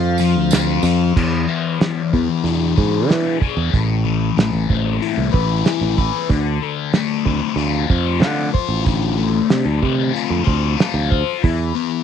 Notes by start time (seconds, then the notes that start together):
Already playing: F2 F3 C4 F4 A4 F5
0.18 F3, open hi-hat, tambourine
0.36 D2
0.51 C4, snare, open hi-hat, tambourine
0.83 F2 F3, open hi-hat, tambourine
1.17 E2 E3, kick, crash
1.48 B3
1.80 E3, snare, open hi-hat
2.13 E2 B3, kick
2.44 E2 D4, open hi-hat
2.77 G#2 G#4, kick
3.08 E3 D4, snare, open hi-hat
3.42 G#4, kick
3.57 E2
3.74 A1 A2, kick, open hi-hat
4.05 E3
4.37 A1 A3, snare, open hi-hat
4.53 A1
4.70 A1 C4, kick
5.02 E4, open hi-hat
5.18 C2
5.33 A1 B4, kick
5.65 E4, snare, open hi-hat
5.81 A1
5.98 B4, kick
6.29 D2 D3, kick, open hi-hat
6.63 A3
6.93 A3, snare, open hi-hat
7.25 D2 C4, kick
7.56 D2 F4, open hi-hat
7.90 F2 C5, kick
8.20 D3 F4, snare, open hi-hat
8.54 C5, kick
8.69 A1
8.84 D3, kick, open hi-hat
9.18 A3
9.50 C3 A3, snare, open hi-hat
9.65 D2
9.82 C3 C4, kick
10.13 F4, open hi-hat
10.30 F2
10.44 D2 C5, kick
10.77 F4, snare, open hi-hat
10.94 D2
11.10 C5, kick
11.43 E2 E3, kick, open hi-hat
11.75 B3